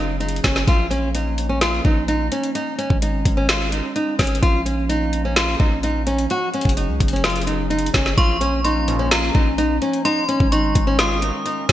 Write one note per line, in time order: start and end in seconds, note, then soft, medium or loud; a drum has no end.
0.00 0.40 F#1 loud
0.00 0.66 F#3 medium
0.00 0.64 C#4 medium
0.00 0.15 D#4 medium
0.00 0.66 G#4 medium
0.20 0.38 D#4 medium
0.20 closed hi-hat medium
0.29 closed hi-hat medium
0.36 closed hi-hat medium
0.44 0.67 F#1 loud
0.44 0.62 C#4 medium
0.44 kick medium
0.44 snare loud
0.44 closed hi-hat medium
0.56 snare medium
0.68 1.81 A#1 loud
0.68 2.53 F3 medium
0.68 2.53 A#3 medium
0.68 8.14 C#4 medium
0.68 0.86 F4 loud
0.68 kick loud
0.68 closed hi-hat medium
0.90 1.09 C#4 medium
0.90 closed hi-hat medium
1.15 1.48 D#4 medium
1.15 closed hi-hat medium
1.38 closed hi-hat medium
1.49 1.58 C#4 medium
1.61 1.79 F4 medium
1.61 snare loud
1.61 closed hi-hat medium
1.85 2.30 A#1 loud
1.85 2.03 D#4 medium
1.85 kick loud
2.08 2.26 D#4 medium
2.08 closed hi-hat medium
2.32 2.50 C#4 medium
2.32 closed hi-hat medium
2.43 closed hi-hat medium
2.55 4.41 D#3 medium
2.55 4.41 G#3 medium
2.55 2.73 D#4 loud
2.55 closed hi-hat medium
2.78 2.96 C#4 medium
2.78 closed hi-hat medium
2.90 3.24 G#1 loud
2.90 kick medium
3.02 3.35 D#4 medium
3.02 closed hi-hat medium
3.25 3.82 G#1 loud
3.25 kick medium
3.25 closed hi-hat medium
3.37 3.46 C#4 medium
3.49 3.67 F4 medium
3.49 snare loud
3.49 closed hi-hat medium
3.72 3.90 D#4 medium
3.72 closed hi-hat medium
3.96 4.14 D#4 medium
3.96 closed hi-hat medium
4.19 4.42 G#1 loud
4.19 4.37 C#4 medium
4.19 kick loud
4.19 snare loud
4.19 closed hi-hat soft
4.19 open hi-hat medium
4.27 closed hi-hat medium
4.35 closed hi-hat medium
4.42 5.56 A#1 loud
4.42 6.28 F3 medium
4.42 6.28 A#3 medium
4.42 4.60 F4 loud
4.42 kick loud
4.42 closed hi-hat medium
4.66 4.84 C#4 medium
4.66 closed hi-hat medium
4.89 5.22 D#4 medium
4.89 closed hi-hat medium
5.13 closed hi-hat medium
5.25 5.34 C#4 medium
5.36 5.54 F4 medium
5.36 snare loud
5.36 closed hi-hat medium
5.60 6.27 A#1 loud
5.60 5.78 D#4 medium
5.60 kick medium
5.83 6.01 D#4 medium
5.83 closed hi-hat medium
6.07 6.25 C#4 medium
6.07 closed hi-hat medium
6.18 closed hi-hat medium
6.30 8.16 F#3 medium
6.30 6.48 F#4 loud
6.30 8.16 G#4 medium
6.30 closed hi-hat medium
6.54 6.72 C#4 medium
6.54 closed hi-hat soft
6.61 6.90 F#1 loud
6.61 kick medium
6.61 closed hi-hat medium
6.69 closed hi-hat medium
6.77 7.10 D#4 medium
6.77 closed hi-hat medium
6.89 7.00 C#2 loud
7.00 7.90 F#1 loud
7.00 kick medium
7.00 closed hi-hat medium
7.08 closed hi-hat medium
7.13 7.22 C#4 medium
7.13 closed hi-hat soft
7.24 7.42 F4 medium
7.24 snare loud
7.24 closed hi-hat medium
7.30 closed hi-hat medium
7.36 closed hi-hat medium
7.41 closed hi-hat medium
7.47 7.65 D#4 medium
7.47 closed hi-hat medium
7.70 7.88 D#4 medium
7.70 closed hi-hat medium
7.79 closed hi-hat medium
7.86 closed hi-hat medium
7.94 8.17 F#1 loud
7.94 8.12 C#4 medium
7.94 kick medium
7.94 snare loud
7.94 closed hi-hat medium
8.06 snare medium
8.18 9.31 A#1 loud
8.18 10.03 F3 medium
8.18 10.03 A#3 medium
8.18 10.03 C#4 medium
8.18 8.36 F4 loud
8.18 8.62 C#6 loud
8.18 kick loud
8.18 closed hi-hat medium
8.41 8.59 C#4 medium
8.41 closed hi-hat medium
8.64 8.98 D#4 medium
8.64 9.08 C6 medium
8.64 closed hi-hat medium
8.88 9.08 C#2 medium
8.88 9.08 A#2 loud
8.88 9.08 F3 loud
8.88 closed hi-hat medium
8.99 9.08 C#4 medium
9.11 9.29 F4 medium
9.11 10.01 A#5 medium
9.11 snare loud
9.11 closed hi-hat medium
9.35 9.80 A#1 loud
9.35 9.53 D#4 medium
9.35 kick loud
9.58 9.76 D#4 medium
9.58 closed hi-hat medium
9.82 10.00 C#4 medium
9.82 closed hi-hat medium
9.93 closed hi-hat medium
10.05 11.72 D#3 medium
10.05 11.72 G#3 medium
10.05 11.72 C#4 loud
10.05 10.23 D#4 loud
10.05 10.49 C6 loud
10.05 closed hi-hat medium
10.29 10.46 C#4 medium
10.29 closed hi-hat medium
10.40 10.74 G#1 loud
10.40 kick medium
10.52 10.85 D#4 medium
10.52 10.96 C#6 medium
10.52 closed hi-hat medium
10.75 11.32 G#1 loud
10.75 kick loud
10.75 closed hi-hat medium
10.87 10.96 C#4 medium
10.99 11.17 F4 medium
10.99 11.72 D#6 medium
10.99 snare loud
10.99 closed hi-hat medium
11.22 11.40 D#4 medium
11.22 closed hi-hat medium
11.46 11.63 D#4 medium
11.46 closed hi-hat medium
11.69 11.72 G#1 loud
11.69 11.72 C#4 medium
11.69 snare loud
11.69 closed hi-hat soft
11.69 open hi-hat medium